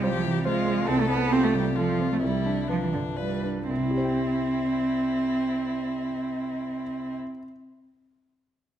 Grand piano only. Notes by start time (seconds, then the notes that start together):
Already playing: C2 C4
0.03 F4 C5
0.25 C3
0.45 F4 C5
0.67 C4
0.89 C2
1.10 C4
1.33 F4 A4
1.55 C3
1.77 F4 A4
2.00 C4
2.22 C2
2.46 D4
2.69 F4 B4
2.94 G2
3.18 F4 B4
3.43 D4
3.69 C2
3.77 C3
3.84 E4
3.91 G4
3.97 C5
4.04 G5